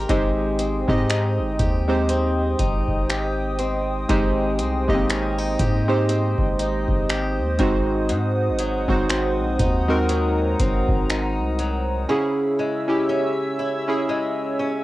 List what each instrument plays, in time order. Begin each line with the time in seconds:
Already playing: steel-string acoustic guitar C4 G4 A#4
0.09 808-style bass G#1, synth keys G#3 C4 D#4 G4 C5, steel-string acoustic guitar G#3, analog synth pad C5 D#5 G5 D#6, kick, closed hi-hat
0.59 steel-string acoustic guitar C4, closed hi-hat
0.88 808-style bass G#2, synth keys G#3 C4 D#4 G4 D#5, kick
1.09 steel-string acoustic guitar D#4, finger snap, closed hi-hat
1.39 808-style bass G1
1.59 808-style bass D#2, steel-string acoustic guitar G4, kick, closed hi-hat
1.88 synth keys G#3 C4 D#4 G4 C5
2.09 steel-string acoustic guitar C4, closed hi-hat
2.59 808-style bass G#1, steel-string acoustic guitar D#4, kick, closed hi-hat
2.88 kick
3.09 steel-string acoustic guitar G4, finger snap, closed hi-hat
3.59 steel-string acoustic guitar C4, closed hi-hat
4.09 808-style bass G#1, synth keys G#3 C4 D#4 G4 C5, steel-string acoustic guitar G#3, kick, closed hi-hat
4.59 808-style bass C2, steel-string acoustic guitar C4, closed hi-hat
4.88 808-style bass G#1, synth keys G#3 A#3 D#4 G4 D#5, kick
4.95 synth keys C4
5.09 steel-string acoustic guitar C#4, finger snap, closed hi-hat
5.38 steel-string acoustic guitar D#4
5.59 808-style bass G#2, steel-string acoustic guitar G4, kick, closed hi-hat
5.88 synth keys G#3 C4 D#4 G4 C5
6.09 steel-string acoustic guitar C4, closed hi-hat
6.38 808-style bass G#1, kick
6.59 steel-string acoustic guitar D#4, closed hi-hat
6.88 808-style bass G#1, kick
7.09 steel-string acoustic guitar G4, finger snap, closed hi-hat
7.39 808-style bass D#2
7.59 808-style bass G#1, steel-string acoustic guitar G#2, synth keys G#3 C4 D#4 F#4 C5, analog synth pad F#5 D#6, kick, closed hi-hat
8.09 steel-string acoustic guitar G#2, 808-style bass G#2, closed hi-hat
8.49 808-style bass G#1
8.59 steel-string acoustic guitar F#3, closed hi-hat
8.88 808-style bass G#1, synth keys G#3 C4 D#4 F#4 C5, kick
9.09 steel-string acoustic guitar C4, finger snap, closed hi-hat
9.39 808-style bass A#1
9.59 808-style bass D#2, steel-string acoustic guitar D#4, analog synth pad A#5, kick, closed hi-hat
9.88 synth keys G#3 C4 D#4 F#4 A#4
10.09 steel-string acoustic guitar F#3, closed hi-hat
10.59 808-style bass G#1, steel-string acoustic guitar C4, kick, closed hi-hat
10.88 808-style bass G#1, kick
11.09 steel-string acoustic guitar D#4, finger snap, closed hi-hat
11.39 808-style bass C2
11.59 steel-string acoustic guitar F#3, closed hi-hat
12.09 steel-string acoustic guitar C#3, synth keys C#4 E4 G#4, analog synth pad C#5 E5 E6
12.59 steel-string acoustic guitar G#3
12.88 synth keys C#4 E4 G4
13.09 steel-string acoustic guitar C#4
13.59 steel-string acoustic guitar E4
13.88 synth keys C#4 E4 G#4
14.09 steel-string acoustic guitar G#3
14.59 steel-string acoustic guitar C#4